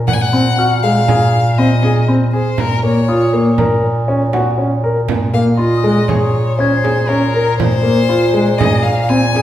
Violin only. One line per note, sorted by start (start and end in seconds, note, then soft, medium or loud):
0.07 0.15 F#5 medium
0.13 0.23 G#5 medium
0.21 0.82 F#5 medium
0.83 1.59 F5 medium
1.58 2.08 D#5 medium
2.33 2.61 C5 medium
2.59 2.83 A#4 medium
2.85 3.55 C#5 medium
5.34 5.45 F5 medium
5.58 6.10 D#5 medium
6.08 6.57 C#5 medium
6.58 7.10 C5 medium
7.08 7.58 A#4 medium
7.58 8.60 C5 loud
8.58 8.85 D#5 medium
8.83 9.10 F5 medium
9.08 9.42 G#5 medium